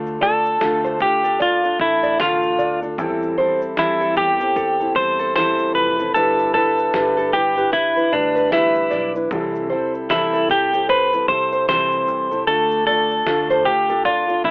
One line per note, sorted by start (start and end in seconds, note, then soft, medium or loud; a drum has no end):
0.00 0.57 D2 loud
0.00 0.21 D3 medium
0.00 0.20 A3 medium
0.00 0.21 D4 medium
0.00 0.21 F4 medium
0.00 0.22 A4 medium
0.06 shaker soft
0.21 0.60 A3 medium
0.21 0.60 D4 medium
0.21 0.61 F4 medium
0.21 1.01 A4 loud
0.21 0.61 A4 medium
0.21 0.44 D5 medium
0.21 kick medium
0.45 shaker soft
0.61 1.76 D2 medium
0.61 1.00 D3 medium
0.61 0.99 A3 medium
0.61 1.00 D4 medium
0.61 1.00 F4 medium
0.61 1.01 A4 medium
0.61 snare loud
0.61 shaker medium
0.84 1.00 C5 medium
0.84 shaker medium
1.00 1.24 A3 soft
1.00 1.25 D4 medium
1.00 1.24 F4 medium
1.00 1.41 G4 loud
1.00 1.23 A4 medium
1.00 kick medium
1.00 shaker soft
1.24 1.64 D4 soft
1.24 1.63 F4 soft
1.24 1.39 A4 medium
1.24 1.62 A4 soft
1.24 shaker medium
1.39 1.81 F4 medium
1.39 1.62 D5 medium
1.39 kick loud
1.39 shaker medium
1.63 1.79 D4 soft
1.63 1.80 F4 soft
1.63 1.79 A4 soft
1.63 shaker medium
1.79 2.55 A1 loud
1.79 2.18 A3 medium
1.79 2.18 D4 medium
1.79 2.20 E4 medium
1.79 2.19 A4 medium
1.79 kick medium
2.03 2.18 D5 medium
2.03 shaker medium
2.19 2.82 D3 medium
2.19 2.82 A3 medium
2.19 2.83 D4 medium
2.19 2.82 F4 medium
2.19 2.79 F4 medium
2.19 2.81 A4 medium
2.19 2.42 F5 medium
2.19 snare loud
2.19 shaker medium
2.43 shaker medium
2.58 2.98 D2 medium
2.58 2.81 D5 medium
2.58 shaker medium
2.82 2.99 D4 soft
2.82 2.98 F4 soft
2.82 2.98 A4 medium
2.82 shaker soft
2.98 4.13 E2 loud
2.98 3.38 E3 medium
2.98 3.37 G3 medium
2.98 3.37 C4 medium
2.98 3.38 E4 medium
2.98 3.39 A4 medium
2.98 kick loud
2.98 shaker medium
3.23 shaker soft
3.38 3.76 G3 medium
3.38 3.77 C4 medium
3.38 3.77 E4 medium
3.38 3.77 A4 medium
3.38 3.60 C5 medium
3.62 shaker medium
3.77 4.17 E3 medium
3.77 4.16 G3 medium
3.77 4.17 C4 medium
3.77 4.17 E4 medium
3.77 4.17 A4 medium
3.77 snare loud
3.77 shaker medium
4.01 4.16 A4 medium
4.01 shaker medium
4.16 4.92 E2 loud
4.16 4.41 G3 medium
4.16 4.41 C4 medium
4.16 4.41 E4 medium
4.16 4.92 G4 loud
4.16 4.39 A4 medium
4.16 kick medium
4.16 shaker soft
4.40 4.81 C4 soft
4.40 4.80 E4 soft
4.40 4.55 G4 medium
4.40 4.79 A4 soft
4.40 shaker medium
4.56 4.79 A4 medium
4.56 kick loud
4.56 shaker medium
4.80 4.96 C4 soft
4.80 4.96 E4 medium
4.80 4.96 A4 medium
4.80 shaker medium
4.96 5.71 E2 medium
4.96 5.35 G3 medium
4.96 5.35 C4 medium
4.96 5.36 E4 medium
4.96 5.36 A4 medium
4.96 5.35 C5 loud
4.96 kick loud
5.19 5.34 A4 medium
5.19 shaker medium
5.36 5.99 E3 medium
5.36 5.99 G3 medium
5.36 5.99 C4 medium
5.36 5.99 E4 medium
5.36 5.98 A4 medium
5.36 5.74 C5 loud
5.36 snare loud
5.36 shaker medium
5.59 shaker medium
5.75 6.11 F1 loud
5.75 6.14 B4 medium
5.75 shaker medium
5.99 6.15 C4 soft
5.99 6.15 E4 soft
5.99 6.15 A4 medium
5.99 shaker medium
6.14 6.90 G1 loud
6.14 6.54 G3 medium
6.14 6.54 D4 medium
6.14 6.55 E4 medium
6.14 6.53 A4 loud
6.14 6.55 B4 medium
6.14 shaker medium
6.39 shaker soft
6.54 6.93 G3 medium
6.54 6.93 D4 medium
6.54 6.94 E4 medium
6.54 7.29 A4 loud
6.54 6.77 B4 medium
6.54 6.94 B4 medium
6.54 kick medium
6.78 shaker soft
6.94 8.08 G1 loud
6.94 7.33 G3 medium
6.94 7.33 D4 medium
6.94 7.34 E4 medium
6.94 7.34 B4 medium
6.94 snare loud
6.94 shaker medium
7.17 7.32 A4 medium
7.17 shaker medium
7.33 7.57 G3 medium
7.33 7.58 D4 medium
7.33 7.57 E4 medium
7.33 7.73 G4 medium
7.33 7.56 B4 medium
7.33 kick medium
7.33 shaker soft
7.56 7.97 D4 soft
7.56 7.97 E4 soft
7.56 7.71 G4 medium
7.56 7.96 B4 soft
7.56 shaker medium
7.72 8.14 E4 medium
7.72 7.95 B4 medium
7.72 kick loud
7.72 shaker medium
7.97 8.12 D4 soft
7.97 8.12 E4 soft
7.97 8.13 B4 medium
7.97 shaker soft
8.12 8.93 D2 medium
8.12 8.51 G3 medium
8.12 8.53 D4 medium
8.12 8.51 D4 medium
8.12 8.52 E4 medium
8.12 8.52 B4 medium
8.12 kick medium
8.12 shaker soft
8.35 8.51 B4 medium
8.35 shaker medium
8.51 9.15 G3 medium
8.51 9.15 D4 medium
8.51 9.15 E4 medium
8.51 9.12 E4 medium
8.51 9.14 B4 medium
8.51 8.74 E5 medium
8.51 snare loud
8.51 shaker medium
8.75 shaker medium
8.90 9.28 B1 medium
8.90 9.13 D5 medium
8.90 snare soft
8.90 shaker medium
9.15 9.32 D4 soft
9.15 9.31 E4 medium
9.15 9.31 B4 medium
9.15 shaker medium
9.31 10.45 C2 loud
9.31 9.71 C3 medium
9.31 9.71 E3 medium
9.31 9.69 G3 medium
9.31 9.69 C4 medium
9.31 9.70 E4 medium
9.31 9.71 A4 medium
9.31 kick loud
9.31 shaker medium
9.55 shaker soft
9.70 10.09 G3 medium
9.70 10.10 C4 medium
9.70 10.10 E4 medium
9.70 10.10 A4 medium
9.70 9.93 C5 medium
9.95 shaker soft
10.10 10.49 C3 medium
10.10 10.50 E3 medium
10.10 10.48 G3 medium
10.10 10.49 C4 medium
10.10 10.50 E4 medium
10.10 10.49 E4 medium
10.10 10.50 A4 loud
10.10 snare loud
10.10 shaker medium
10.33 10.48 A4 medium
10.33 shaker medium
10.49 11.24 C2 medium
10.49 10.73 G3 medium
10.49 10.73 C4 medium
10.49 10.73 E4 medium
10.49 10.87 G4 loud
10.49 10.72 A4 medium
10.49 kick medium
10.49 shaker soft
10.73 11.14 G3 soft
10.73 11.13 C4 soft
10.73 11.12 E4 soft
10.73 10.88 G4 medium
10.73 11.12 A4 medium
10.73 shaker medium
10.89 11.26 B4 medium
10.89 11.11 C5 medium
10.89 kick loud
10.89 shaker medium
11.13 11.27 G3 soft
11.13 11.28 C4 soft
11.13 11.29 E4 medium
11.13 11.29 A4 medium
11.13 shaker medium
11.28 12.03 C2 loud
11.28 11.68 G3 medium
11.28 11.68 C4 medium
11.28 11.68 E4 medium
11.28 11.68 A4 medium
11.28 11.65 C5 loud
11.28 kick medium
11.52 11.67 C5 medium
11.52 shaker medium
11.68 12.31 C3 medium
11.68 12.31 E3 medium
11.68 12.32 G3 medium
11.68 12.31 C4 medium
11.68 12.31 E4 medium
11.68 12.30 A4 medium
11.68 12.43 C5 loud
11.68 snare loud
11.68 shaker medium
11.92 shaker medium
12.08 12.44 C2 loud
12.08 shaker medium
12.31 12.47 G3 medium
12.31 12.47 C4 medium
12.31 12.47 E4 medium
12.31 12.47 A4 medium
12.31 shaker medium
12.47 13.22 D2 loud
12.47 12.87 D3 medium
12.47 12.85 A3 medium
12.47 12.86 D4 medium
12.47 12.86 F4 medium
12.47 12.85 A4 loud
12.47 12.87 A4 medium
12.47 shaker medium
12.71 shaker soft
12.86 13.25 A3 medium
12.86 13.25 D4 medium
12.86 13.26 F4 medium
12.86 13.65 A4 loud
12.86 13.26 A4 medium
12.86 13.09 D5 medium
12.86 kick medium
13.11 shaker soft
13.26 14.40 D2 loud
13.26 13.65 D3 medium
13.26 13.64 A3 medium
13.26 13.65 D4 loud
13.26 13.66 F4 medium
13.26 13.66 A4 medium
13.26 snare loud
13.26 shaker medium
13.50 13.65 C5 loud
13.50 shaker medium
13.65 13.89 A3 medium
13.65 13.89 D4 medium
13.65 13.89 F4 medium
13.65 14.05 G4 medium
13.65 13.88 A4 medium
13.65 kick medium
13.65 shaker soft
13.89 14.29 D4 soft
13.89 14.28 F4 soft
13.89 14.27 A4 medium
13.89 14.04 A4 medium
13.89 shaker medium
14.05 14.44 F4 medium
14.05 14.27 D5 medium
14.05 kick loud
14.05 shaker medium
14.28 14.43 D4 soft
14.28 14.45 F4 medium
14.28 14.44 A4 medium
14.28 shaker medium
14.44 14.51 A1 loud
14.44 14.51 A3 medium
14.44 14.51 D4 medium
14.44 14.51 E4 medium
14.44 14.51 A4 medium
14.44 kick loud